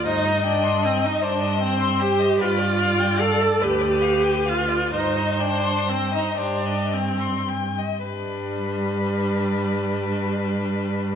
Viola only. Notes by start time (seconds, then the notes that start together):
0.06 D#4
0.47 D4
0.85 C4
1.06 D#4
1.24 D4
1.62 C4
2.01 G4
2.41 F4
3.21 A4
3.63 G4
4.49 F4
4.94 D#4
5.41 D4
5.89 C4
6.14 D#4
6.38 D4
6.93 C4
8.07 G3